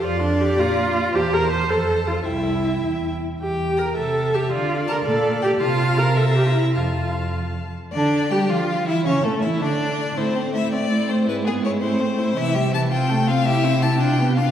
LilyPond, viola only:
\new Staff \with { instrumentName = "Viola" } { \time 6/8 \key f \major \tempo 4. = 108 f'8 d'8 g'8 f'4. | g'8 bes'8 c''8 a'4 f'8 | e'2~ e'8 r8 | g'4 bes'8 a'4 g'8 |
f'4 bes'8 a'4 g'8 | f'4 bes'8 a'8 g'16 f'16 e'8 | f'4. r4. | \key d \minor d'4 g'8 f'4 e'8 |
cis'8 a8 e'8 d'4. | c'8 a8 c'8 a8 c'8 a8 | gis8 b8 gis8 c'8 a8 c'8 | \key c \major e8 g8 e8 c'8 a8 c'8 |
e'8 c'8 e'8 d'8 b8 d'8 | }